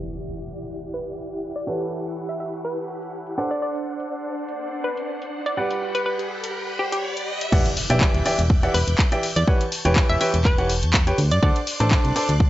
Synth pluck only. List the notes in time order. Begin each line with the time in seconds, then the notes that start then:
0.94 B4
1.56 D5
2.29 E5
2.40 E5
2.65 B4
3.51 D5
3.62 D5
4.84 B4
5.46 D5
5.95 B4
6.06 B4
6.79 G4
6.92 G4
8.74 B4
9.36 D5
10.09 E5
10.21 E5
10.45 B4
11.32 D5
11.43 D5